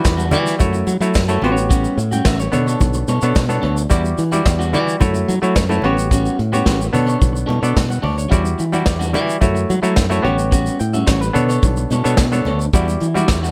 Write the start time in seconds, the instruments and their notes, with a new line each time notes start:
Already playing: clav G3 E4 F#4 B4
0.04 fingered electric bass E2, muted clean electric guitar stroke, kick, snare, shaker
0.17 clean electric guitar G3 D4 F#4, muted conga, shaker
0.31 fingered electric bass E3, clav G3 E4 F#4 D5, closed hi-hat, low conga, shaker
0.45 muted clean electric guitar stroke, snare, closed hi-hat, shaker
0.58 fingered electric bass F#2, clav A3 E4 F#4 C#5, muted clean electric guitar stroke, kick, closed hi-hat, muted conga, high conga, low conga, shaker
0.73 muted clean electric guitar stroke, muted conga, shaker
0.87 fingered electric bass F#3, closed hi-hat, high conga, shaker
1.00 fingered electric bass F#3, clav A3 E4 F#4 C#5, muted clean electric guitar stroke, closed hi-hat, shaker
1.14 fingered electric bass F#2, muted clean electric guitar stroke, kick, snare, high conga, shaker
1.28 clav A3 E4 F#4 C#5, clean electric guitar A3 E4 A4, muted conga, high conga, shaker
1.42 fingered electric bass A1, clean electric guitar G3 C#4 F#4, clav B3 F#4 G4 C5, closed hi-hat, low conga
1.52 clav C#5
1.56 muted clean electric guitar stroke, closed hi-hat, shaker
1.70 clean electric guitar G3 C#4 F#4, kick, closed hi-hat, muted conga, shaker
1.84 closed hi-hat, muted conga, shaker
1.97 fingered electric bass A2, muted clean electric guitar stroke, closed hi-hat, shaker
2.11 clean electric guitar G3 C#4 F#4, clav G5, closed hi-hat, high conga, shaker
2.25 fingered electric bass A1, clean electric guitar G3 C#4 F#4, clav E5, kick, snare, shaker
2.40 clav C#5, muted clean electric guitar stroke, muted conga, shaker
2.52 fingered electric bass B2, clav B3 D4 A4 C#5, muted clean electric guitar stroke, closed hi-hat, low conga, shaker
2.66 clean electric guitar D4 A4 C#5, closed hi-hat, shaker
2.80 fingered electric bass B1, muted clean electric guitar stroke, kick, closed hi-hat, muted conga, high conga, low conga, shaker
2.94 muted clean electric guitar stroke, closed hi-hat, shaker
3.08 fingered electric bass B2, clean electric guitar D4 A4 C#5, closed hi-hat, high conga, shaker
3.22 fingered electric bass B2, clav B3 D4 A4 C#5, clean electric guitar D4 A4 C#5, closed hi-hat, shaker
3.35 fingered electric bass B2, kick, snare, muted conga, high conga, shaker
3.49 clav B3 D4 A4 C#5, muted clean electric guitar stroke, high conga, shaker
3.62 fingered electric bass D2, clean electric guitar D4 A4 C#5, closed hi-hat, low conga
3.77 muted clean electric guitar stroke, closed hi-hat, shaker
3.90 fingered electric bass E2, clean electric guitar G3 D4 F#4, clav G3 E4 F#4 D5, kick, closed hi-hat, shaker
4.03 muted clean electric guitar stroke, closed hi-hat, shaker
4.18 fingered electric bass E3, muted clean electric guitar stroke, closed hi-hat, shaker
4.31 clav G3 E4 F#4 D5, clean electric guitar G3 D4 F#4, closed hi-hat, high conga, shaker
4.45 fingered electric bass E2, muted clean electric guitar stroke, kick, snare, shaker
4.59 clean electric guitar G3 D4 F#4, shaker
4.73 fingered electric bass E3, clav G3 E4 F#4 D5, muted clean electric guitar stroke, closed hi-hat, low conga, shaker
4.86 muted clean electric guitar stroke, closed hi-hat, shaker
5.00 fingered electric bass F#2, clav A3 E4 F#4 C#5, muted clean electric guitar stroke, kick, closed hi-hat, muted conga, high conga, low conga, shaker
5.14 muted clean electric guitar stroke, muted conga, shaker
5.28 fingered electric bass F#3, closed hi-hat, high conga, shaker
5.42 fingered electric bass F#3, clav A3 E4 F#4 C#5, muted clean electric guitar stroke, closed hi-hat, shaker
5.55 fingered electric bass F#2, muted clean electric guitar stroke, kick, snare, muted conga, high conga, shaker
5.69 clav A3 E4 F#4 C#5, clean electric guitar A3 E4 A4, muted conga, high conga, shaker
5.82 fingered electric bass A1, clean electric guitar G3 C#4 F#4, clav B3 F#4 G4 C#5, closed hi-hat, low conga
5.97 muted clean electric guitar stroke, closed hi-hat, shaker
6.11 clean electric guitar G3 C#4 F#4, kick, closed hi-hat, shaker
6.25 muted conga, shaker
6.39 fingered electric bass A2, muted clean electric guitar stroke, closed hi-hat
6.52 clean electric guitar G3 C#4 F#4, clav B3 F#4 G4 C#5, closed hi-hat, high conga, shaker
6.66 fingered electric bass A1, clean electric guitar G3 C#4 F#4, kick, snare, shaker
6.80 muted clean electric guitar stroke, muted conga, shaker
6.93 fingered electric bass B2, clav B3 D4 A4 C#5, muted clean electric guitar stroke, open hi-hat, low conga, shaker
7.07 clean electric guitar D4 A4 C#5, closed hi-hat, shaker
7.20 fingered electric bass B1, muted clean electric guitar stroke, kick, closed hi-hat, high conga, low conga, shaker
7.33 muted clean electric guitar stroke, shaker
7.46 fingered electric bass B2, clean electric guitar D4 A4 C#5, closed hi-hat, high conga
7.61 fingered electric bass B2, clav B3 D4 A4 D5, clean electric guitar D4 A4 C#5, closed hi-hat, shaker
7.77 fingered electric bass B2, kick, snare, muted conga, high conga, shaker
7.89 clav F#5, muted clean electric guitar stroke, muted conga, high conga, shaker
8.02 fingered electric bass D2, clean electric guitar D4 A4 C#5, clav D5, open hi-hat, low conga
8.16 clav C#5, muted clean electric guitar stroke, closed hi-hat, shaker
8.29 fingered electric bass E2, clean electric guitar G3 D4 F#4, clav G3 E4 F#4 D5, kick, closed hi-hat, muted conga, shaker
8.44 muted clean electric guitar stroke, muted conga, shaker
8.58 fingered electric bass E3, muted clean electric guitar stroke, closed hi-hat, shaker
8.72 clav G3 E4 F#4 D5, clean electric guitar G3 D4 F#4, closed hi-hat, high conga, shaker
8.86 fingered electric bass E2, muted clean electric guitar stroke, kick, snare, muted conga, shaker
8.99 clean electric guitar G3 D4 F#4, muted conga, shaker
9.12 fingered electric bass E3, clav G3 E4 F#4 D5, muted clean electric guitar stroke, closed hi-hat, low conga, shaker
9.26 muted clean electric guitar stroke, closed hi-hat, shaker
9.41 fingered electric bass F#2, clav A3 E4 F#4 C#5, muted clean electric guitar stroke, kick, closed hi-hat, high conga, low conga, shaker
9.55 muted clean electric guitar stroke, closed hi-hat, shaker
9.70 fingered electric bass F#3, closed hi-hat, high conga, shaker
9.82 fingered electric bass F#3, clav A3 E4 F#4 C#5, muted clean electric guitar stroke, closed hi-hat, shaker
9.96 fingered electric bass F#2, muted clean electric guitar stroke, kick, snare, high conga, shaker
10.10 clav A3 E4 F#4 C#5, clean electric guitar A3 E4 A4, high conga, shaker
10.22 fingered electric bass A1, clean electric guitar G3 C#4 F#4, clav B3 F#4 G4 C#5, closed hi-hat, low conga
10.38 muted clean electric guitar stroke, closed hi-hat, shaker
10.51 clean electric guitar G3 C#4 F#4, kick, closed hi-hat, shaker
10.66 closed hi-hat, shaker
10.79 fingered electric bass A2, clav G5, muted clean electric guitar stroke, closed hi-hat, shaker
10.93 clean electric guitar G3 C#4 F#4, clav E5, closed hi-hat, high conga, shaker
11.06 fingered electric bass A1, clean electric guitar G3 C#4 F#4, clav C#5, kick, snare, muted conga, shaker
11.21 clav B4, muted clean electric guitar stroke, closed hi-hat, muted conga, shaker
11.33 fingered electric bass B2, clav B3 D4 A4 C#5, muted clean electric guitar stroke, closed hi-hat, low conga, shaker
11.48 clean electric guitar D4 A4 C#5, closed hi-hat, shaker
11.63 fingered electric bass B1, muted clean electric guitar stroke, kick, closed hi-hat, high conga, low conga, shaker
11.77 muted clean electric guitar stroke, shaker
11.90 fingered electric bass B2, clean electric guitar D4 A4 C#5, closed hi-hat, high conga, shaker
12.04 fingered electric bass B2, clav B3 D4 A4 C#5, clean electric guitar D4 A4 C#5, closed hi-hat, shaker
12.17 fingered electric bass B2, kick, snare, high conga, shaker
12.32 clav B3 D4 A4 C#5, muted clean electric guitar stroke, high conga, shaker
12.45 fingered electric bass D2, clean electric guitar D4 A4 C#5, closed hi-hat, low conga
12.59 muted clean electric guitar stroke, closed hi-hat, shaker
12.73 fingered electric bass E2, clav G3 E4 F#4 D5, clean electric guitar G3 D4 F#4, kick, closed hi-hat, muted conga, shaker
12.88 muted clean electric guitar stroke, muted conga, shaker
13.00 fingered electric bass E3, muted clean electric guitar stroke, closed hi-hat, shaker
13.14 clav G3 E4 F#4 D5, clean electric guitar G3 D4 F#4, closed hi-hat, high conga, shaker
13.28 fingered electric bass E2, muted clean electric guitar stroke, kick, snare, shaker
13.43 clean electric guitar G3 D4 F#4, shaker